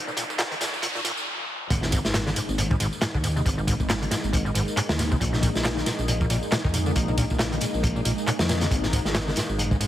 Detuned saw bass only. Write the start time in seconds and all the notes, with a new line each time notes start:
1.70 G#1
2.05 G#1
2.49 G#1
2.80 G#1
3.15 D#2
3.46 G#1
3.80 G#1
4.24 G#1
4.55 G#1
4.90 D#2
5.21 A#1
5.55 A#1
5.99 A#1
6.30 A#1
6.65 F2
6.96 A#1
7.31 A#1
7.74 A#1
8.06 A#1
8.40 F2
8.71 G#1
9.06 G#1
9.49 G#1
9.81 G#1